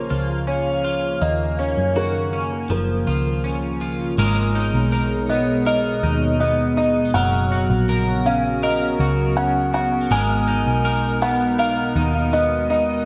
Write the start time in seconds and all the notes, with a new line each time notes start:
Already playing: C#3 F3 A#3 C#4 F4 A#4 F5 G#5
0.10 C#2 F4
0.47 C#4 C#5
0.84 F4
1.21 D#2 D#3 A#3 D#4 A#4 D#5
1.59 C#4 C#5
1.77 F#2
1.96 F#4 A#4
2.33 C#4
2.70 F#1 F3 F4 A#4
3.07 C#2 F4
3.44 C#4 A#4
3.68 C#5
3.81 F4
4.18 G#1 B2 G#3 B3 D#4 G#4 A#4
4.55 D#4
4.74 B1
4.92 A#4 D#5
5.29 B3 D#5
5.66 A#4 D#5
6.03 D#2 D#4
6.40 B3 D#5
6.77 D#4 D#5
7.14 F#1 C#3 F#3 F#4 A#4 F#5
7.52 F#4 F#5
7.70 A#1
7.89 A#4
8.26 C#4 F5
8.63 A#4 D#5
9.00 C#2 F#4
9.37 C#4 F#5
9.74 F#4 F#5
10.11 G#1 B2 G#3 D#4 A#4 G#5
10.48 D#4
10.66 B1
10.85 A#4
11.22 B3 F#5
11.59 A#4 F5
11.96 D#2 D#4 D#5
12.33 B3 D#5
12.70 D#4 D#5